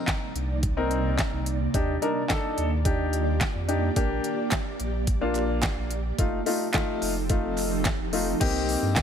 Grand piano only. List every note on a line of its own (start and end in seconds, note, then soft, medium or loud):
0.00 0.29 C4 medium
0.00 0.29 D#4 medium
0.00 0.29 A#4 loud
0.77 1.44 C4 medium
0.77 1.45 D#4 medium
0.77 1.45 A#4 loud
1.74 1.94 D4 medium
1.74 1.94 D#4 medium
1.74 1.94 G4 medium
2.02 2.21 D4 medium
2.02 2.21 D#4 medium
2.02 2.21 A#4 medium
2.29 2.68 D4 medium
2.29 2.68 D#4 medium
2.29 2.68 A4 loud
2.85 3.43 D4 medium
2.85 3.43 D#4 medium
2.85 3.43 G4 loud
3.68 3.88 D4 medium
3.68 3.88 D#4 medium
3.68 3.88 G4 medium
3.96 4.73 A#3 loud
3.96 4.74 D4 medium
3.96 4.74 G4 loud
5.21 5.89 A#3 medium
5.21 5.89 D4 medium
5.21 5.89 F4 loud
6.19 6.38 A3 medium
6.19 6.38 D#4 medium
6.19 6.38 F4 loud
6.46 6.65 A3 medium
6.46 6.66 D#4 medium
6.46 6.66 F4 medium
6.74 7.13 A3 loud
6.74 7.13 D#4 medium
6.74 7.13 F4 loud
7.30 7.88 A3 medium
7.30 7.88 D#4 medium
7.30 7.88 F4 loud
8.13 8.32 A3 medium
8.13 8.32 D#4 medium
8.13 8.32 F4 medium
8.40 8.98 A#3 loud
8.40 8.99 C4 medium
8.40 8.99 D#4 medium
8.40 8.99 G4 loud